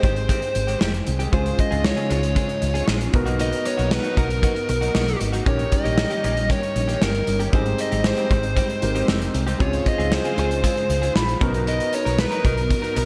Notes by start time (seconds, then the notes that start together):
Already playing: G#3 C4 D#4 G4 G#4 G5
0.03 G#1 D#3 G#3 C4 G4 C5, kick, closed hi-hat
0.16 muted clean electric guitar stroke, closed hi-hat
0.28 D#3 G#3 C4 G4, kick, closed hi-hat
0.42 muted clean electric guitar stroke, closed hi-hat
0.55 G#1, muted clean electric guitar stroke, closed hi-hat
0.67 D#3 G#3 C4 G4, closed hi-hat
0.80 F1 D#3 G#3 C4 G4, snare
0.94 muted clean electric guitar stroke, closed hi-hat
1.06 C2, muted clean electric guitar stroke, closed hi-hat
1.19 D#3 G#3 C4 G4, closed hi-hat
1.31 C#2 C#3 G#3 C4 C#4 D#4 F4 G#4 C5, kick, closed hi-hat
1.45 muted clean electric guitar stroke, closed hi-hat
1.58 D#5, muted clean electric guitar stroke, kick, closed hi-hat
1.71 C#2 G#3 C4 F4 G#4, closed hi-hat
1.84 C#5, snare
1.96 G#3 C4 F4 G#4, closed hi-hat
2.09 C#2 G#3 C4 F4 G#4 C#5, closed hi-hat
2.23 muted clean electric guitar stroke, closed hi-hat
2.35 G#3 C4 F4 G#4, kick, closed hi-hat
2.49 muted clean electric guitar stroke, closed hi-hat
2.61 C#2, muted clean electric guitar stroke, closed hi-hat
2.74 G#3 C4 F4 G#4, closed hi-hat
2.87 A#1 G#3 C4 F4 G#4, snare
3.00 muted clean electric guitar stroke, closed hi-hat
3.13 B1 B3 D#4 F#4 A#4, muted clean electric guitar stroke, kick, closed hi-hat
3.26 F#3 A#3 D#4 F#4, closed hi-hat
3.38 F#3 A#3 D#4 F#4 D#5, closed hi-hat
3.52 muted clean electric guitar stroke, closed hi-hat
3.65 C#5, muted clean electric guitar stroke, closed hi-hat
3.77 B1 F#3 A#3 D#4 F#4, closed hi-hat
3.90 B4, muted clean electric guitar stroke, snare
4.03 F#3 A#3 D#4 F#4, closed hi-hat
4.16 B1 F#3 A#3 D#4 F#4 A#4, kick, closed hi-hat
4.29 muted clean electric guitar stroke, closed hi-hat
4.42 F#3 A#3 D#4 F#4, kick, closed hi-hat
4.55 muted clean electric guitar stroke, closed hi-hat
4.68 B1 A#4, muted clean electric guitar stroke, closed hi-hat
4.81 F#3 A#3 D#4 F#4, closed hi-hat
4.94 B1 F#3 A#3 D#4 F#4, snare
5.07 muted clean electric guitar stroke, closed hi-hat
5.20 G#1, muted clean electric guitar stroke, closed hi-hat
5.32 F#3 A#3 D#4 F#4, closed hi-hat
5.45 A#1 D#3 G3 A#3 C#4 D#4 G4 A#4 C#5, kick, closed hi-hat
5.59 muted clean electric guitar stroke, closed hi-hat
5.72 D#5, muted clean electric guitar stroke, kick, closed hi-hat
5.84 A#1 D#3 A#3 C#4 G4, closed hi-hat
5.98 snare
6.10 D#3 A#3 C#4 G4, closed hi-hat
6.23 A#1 D#3 A#3 C#4 G4 D#5, closed hi-hat
6.36 muted clean electric guitar stroke, closed hi-hat
6.49 D#3 A#3 C#4 G4 C#5, kick, closed hi-hat
6.62 muted clean electric guitar stroke, closed hi-hat
6.75 A#1, muted clean electric guitar stroke, closed hi-hat
6.88 D#3 A#3 C#4 G4, closed hi-hat
7.01 G1 D#3 A#3 C#4 G4 A#4, snare
7.14 muted clean electric guitar stroke, closed hi-hat
7.27 G1, muted clean electric guitar stroke, closed hi-hat
7.39 D#3 A#3 C#4 G4, closed hi-hat
7.52 G#1 G3 G#3 C4 D#4 G4 G#4 C5 G5, kick, closed hi-hat
7.66 muted clean electric guitar stroke, closed hi-hat
7.78 D#5, muted clean electric guitar stroke, closed hi-hat
7.91 G#1 G3 C4 D#4 G4, closed hi-hat
8.04 C5, snare
8.17 G3 C4 D#4 G4, closed hi-hat
8.30 G#1 G3 C4 D#4 G4 C5, kick, closed hi-hat
8.43 muted clean electric guitar stroke, closed hi-hat
8.56 G3 C4 D#4 G4, kick, closed hi-hat
8.69 muted clean electric guitar stroke, closed hi-hat
8.82 G#1 C4 D#4 G4 A#4, muted clean electric guitar stroke, closed hi-hat
8.95 G3 C4 D#4 G4, closed hi-hat
9.08 F1 G3 C4 D#4 G4, snare
9.21 muted clean electric guitar stroke, closed hi-hat
9.34 C2, muted clean electric guitar stroke, closed hi-hat
9.47 G3 C4 D#4 G4, closed hi-hat
9.59 C#2 C#3 G#3 C4 C#4 D#4 F4 G4 G#4 C#5, kick, closed hi-hat
9.68 G#4
9.73 muted clean electric guitar stroke, closed hi-hat
9.86 D#5, muted clean electric guitar stroke, kick, closed hi-hat
9.98 C#2 G#3 C4 F4 G#4, closed hi-hat
10.12 C5, muted clean electric guitar stroke, snare
10.24 G#3 C4 F4 G#4, closed hi-hat
10.37 C#2 G#3 C4 F4 G#4 C5, closed hi-hat
10.50 muted clean electric guitar stroke, closed hi-hat
10.63 G#3 C4 F4 G#4, kick, closed hi-hat
10.76 muted clean electric guitar stroke, closed hi-hat
10.89 C#2, muted clean electric guitar stroke, closed hi-hat
11.02 G#3 C4 F4 G#4, closed hi-hat
11.15 A#1 B5, snare
11.28 muted clean electric guitar stroke, closed hi-hat
11.40 B1 F#3 B3 C#4 D#4 F#4 A#4, kick, closed hi-hat
11.47 D#4
11.53 F#3 B3 D#4 A#4, closed hi-hat
11.66 F#3 B3 D#4 A#4 D#5, closed hi-hat
11.80 muted clean electric guitar stroke, closed hi-hat
11.92 C#5, muted clean electric guitar stroke, closed hi-hat
12.05 B1 F#3 B3 D#4 A#4, closed hi-hat
12.18 B4, muted clean electric guitar stroke, snare
12.31 F#3 B3 D#4 A#4, closed hi-hat
12.44 B1 F#3 B3 D#4 A#4, kick, closed hi-hat
12.57 muted clean electric guitar stroke, closed hi-hat
12.70 muted clean electric guitar stroke, kick, closed hi-hat
12.82 F#3 B3 D#4 A#4, closed hi-hat
12.95 B1 F#3 B3 D#4 A#4, closed hi-hat